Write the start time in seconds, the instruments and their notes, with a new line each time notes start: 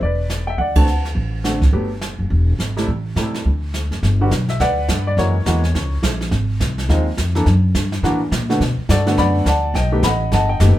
0.01 upright bass E1, grand piano D5, brush sweep, kick
0.05 grand piano B4
0.30 snare, hi-hat pedal
0.47 grand piano E5 G5
0.58 upright bass D2, grand piano D5 F#5, brush sweep, kick
0.75 grand piano D3 A3 C4 F#4 F#5 A5, kick, ride
0.87 hi-hat pedal
1.05 snare
1.15 upright bass A1, brush sweep, kick
1.44 grand piano D3 A3 C4 F#4, snare, hi-hat pedal
1.62 kick, snare
1.73 upright bass G1, grand piano F#3 A3 B3 G4, brush sweep, kick
2.01 snare, hi-hat pedal
2.19 upright bass F#1
2.30 upright bass E1, brush sweep, kick
2.59 upright bass G#1, snare, hi-hat pedal
2.77 grand piano C3 G3 A3 E4, snare
2.87 upright bass A1, brush sweep, kick
3.16 upright bass A2, grand piano C3 G3 A3 E4, snare, hi-hat pedal
3.34 snare
3.46 upright bass D2, brush sweep, kick
3.74 snare, hi-hat pedal
3.91 upright bass F#1, snare
4.03 upright bass G1, brush sweep, kick, snare
4.21 grand piano D3 G3 B3 F#4
4.31 upright bass B1, kick, snare, hi-hat pedal
4.48 grand piano E5, snare
4.60 upright bass D2, grand piano B4 D5 F#5, brush sweep, kick, snare
4.88 upright bass G2, kick, snare, hi-hat pedal
5.07 grand piano D5
5.17 upright bass F#2, grand piano E3 G#3 A#3 E4 F#4 A#4 C#5, brush sweep, kick, snare
5.46 upright bass E2, grand piano E3 G#3 A#3 F#4, kick, snare, hi-hat pedal
5.64 snare
5.74 upright bass C#2, brush sweep, kick, snare
6.02 upright bass A#1, kick, snare, hi-hat pedal
6.21 snare
6.31 upright bass G#1, brush sweep, kick, snare
6.60 upright bass C2, kick, snare, hi-hat pedal
6.78 snare
6.89 upright bass D#2, grand piano D#3 G#3 C4 F4, brush sweep, kick, snare
7.17 upright bass F2, kick, snare, hi-hat pedal
7.35 grand piano E3 A#3 D4 A4, snare
7.46 upright bass F#2, brush sweep, kick, snare
7.74 upright bass G2, kick, snare, hi-hat pedal
7.92 snare
8.03 upright bass A2, grand piano E3 A#3 D4 F#4, brush sweep, kick, snare
8.31 upright bass A#2, kick, snare, hi-hat pedal
8.49 grand piano D3 A3 B3 F#4, snare
8.60 upright bass B2, brush sweep, kick, snare
8.78 muted upright bass stroke
8.89 upright bass G2, grand piano F#4 A4 D5, kick, snare, hi-hat pedal
9.06 grand piano D3 A3 B3 F#4, snare
9.17 upright bass F#2, grand piano D5 F#5 B5, brush sweep, kick, snare
9.45 upright bass D2, grand piano D5 F#5 A5, kick, snare, hi-hat pedal
9.74 upright bass B1, grand piano D#5 G5, brush sweep, kick, snare
9.92 grand piano D#3 A3 B3 G4
10.02 upright bass A1, grand piano D#5 F#5 B5, kick, snare, hi-hat pedal
10.32 upright bass G1, grand piano D#5 F#5 A5, brush sweep, kick, snare
10.49 grand piano D#5 G5
10.60 upright bass F#1, grand piano D#3 A3 B3 G4, kick, snare, hi-hat pedal